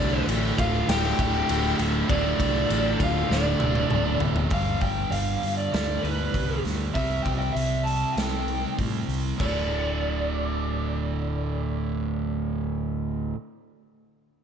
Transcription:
Already playing: C2 D2 A2 D3 D4 D5
0.27 A1, ride
0.58 D1 F4 F5, kick, ride
0.88 D1 D2 A2 D3 G4 G5, snare, ride
1.18 D1 D2 A2 D3 G4 G5, kick, ride
1.48 D1 D2 A2 D3, ride
1.79 D1, snare, ride
2.09 D1 D2 A2 D3 D4 D5, kick, ride
2.40 C2, kick, ride
2.70 A1, ride
3.00 D1 F4 F5, kick, ride
3.28 D1 D2 A2 D3, snare
3.33 D4 D5
3.59 D1 D2 A2 D3, high tom
3.75 high tom
3.90 D1 D2 A2 D3, mid tom
4.20 D1, floor tom
4.36 floor tom
4.50 G1 G2 D3 F5, kick, open hi-hat
4.55 G3
4.81 G1 G5, kick, open hi-hat
5.11 G1 F5, open hi-hat
5.43 G2, open hi-hat
5.57 D5
5.72 D2 G2 D3 G3 D5, snare, open hi-hat
6.03 D2 B4, open hi-hat
6.34 C2, kick, open hi-hat
6.64 D2, snare, open hi-hat
6.94 C2 C3 G3 C4 E5, kick, open hi-hat
7.22 C2 G5, kick, open hi-hat
7.39 G5
7.52 C2 E5
7.56 open hi-hat
7.84 A5, open hi-hat
8.13 C2 G5
8.17 C3 G3 C4, snare, open hi-hat
8.48 open hi-hat
8.78 A2, kick, open hi-hat
9.08 C2, open hi-hat
9.39 D1 D2 A2 D5, kick, crash
9.43 D3

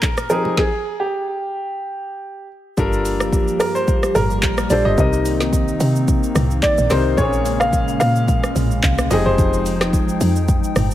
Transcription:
Already playing: A#2 A#3 C4 C#4 G#4 A#4
0.02 kick, clap, high bongo, shaker
0.17 cross-stick, shaker
0.30 F3 C4 D#4 G4 G#4 A#4, shaker
0.45 low bongo
0.57 G#4, kick, snare
1.00 G4
2.77 G1 F3 G3 A#3 D4 F4 G4 A4 A#4, kick, shaker
2.93 shaker
3.05 open hi-hat, shaker
3.20 cross-stick, shaker
3.33 kick, shaker
3.48 shaker
3.60 G2 A#4, cross-stick, open hi-hat, shaker
3.75 C5, shaker
3.88 kick, shaker
4.03 cross-stick, shaker
4.15 G1 A#4, mid tom, open hi-hat, shaker
4.30 shaker
4.43 A#1, kick, clap, shaker
4.58 cross-stick, shaker
4.70 A#1 G3 D4 F4 A4 C5 D5, open hi-hat, shaker
4.85 G1 D#5
4.97 C2 C3 D#3 A#3 C4 D#4 A#4 D#5, kick, shaker
5.13 shaker
5.26 open hi-hat, shaker
5.40 snare, shaker
5.53 kick, shaker
5.68 shaker
5.80 C3, open hi-hat, shaker
5.96 shaker
6.08 kick, shaker
6.23 shaker
6.35 C2, cross-stick, mid tom, open hi-hat, shaker
6.51 shaker
6.62 D5, kick, clap, shaker
6.78 A#1, shaker
6.90 C2 C3 C4 D#4 A#4 C5, cross-stick, snare, open hi-hat, shaker
7.17 A#1 A#2 C#3 G#3 A#3 C4 C#4 G#4 C#5, kick, shaker
7.25 C#4
7.33 shaker
7.46 open hi-hat, shaker
7.60 F5, cross-stick, shaker
7.73 kick, shaker
7.88 shaker
8.00 A#2 F5, cross-stick, open hi-hat, shaker
8.16 shaker
8.28 kick, shaker
8.44 cross-stick, shaker
8.56 A#1, mid tom, open hi-hat, shaker
8.71 shaker
8.83 C2, kick, clap, shaker
8.98 cross-stick, shaker
9.10 F1 F3 C4 D#4 G4 G#4 D#5 G5, open hi-hat, shaker
9.26 F1 C5
9.38 F1, kick, shaker
9.53 shaker
9.66 open hi-hat, shaker
9.81 cross-stick, snare, shaker
9.93 kick, shaker
10.09 shaker
10.21 F2, open hi-hat, shaker
10.36 shaker
10.48 kick, shaker
10.64 shaker
10.76 G1, cross-stick, mid tom, open hi-hat, shaker
10.91 shaker

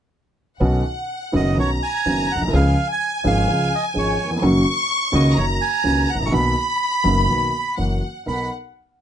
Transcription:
0.60 B1 B2 D#3 B3 C#4 F#4 F#5
1.32 F#1 F#2 D#3 B3 C#4 F#4 D#5
1.57 B1 B2 D#3 B3 C#4 F#4 C#5 A#5
1.83 G#5
2.05 F#1 F#2 D#3 B3 C#4 F#4
2.32 A#1 F#5
2.41 B1
2.47 C2
2.53 C#2 C#3 F3 G#3 C#4 G#4 F5 G#5
2.92 G#5
3.24 G#1 G#2 F3 G#3 C#4 G#4 F5
3.47 C#2 C#3 F3 G#3 C#4 G#4
3.75 D#5
3.94 G#1 G#2 F3 G#3 C#4 G#4
3.98 C#5
4.24 D#2
4.30 E2
4.36 F2
4.41 F#1 F#2 D#3 F#3 A#3 C#4 F#4 C#6
5.12 C#2 C#3 D#3 A#3 C#4 F#4 D#5
5.36 F#1 F#2 D#3 F#3 A#3 C#4 F#4 C#5 A#5
5.55 A#5
5.61 G#5
5.84 C#2 C#3 D#3 A#3 C#4 F#4
6.10 F#5
6.14 G#1
6.20 A1
6.26 A#1 C#6
6.31 B1 B2 D#3 A#3 B3 F#4 B5
7.04 F#1 F#2 D#3 A#3 B3 F#4
7.29 B1 B2 D#3 A#3 B3 F#4
7.77 F#1 F#2 E3 F#3 A#3 C#4 F#4 F#5
8.26 B1 B3 D#4 A#4 F#5 B5

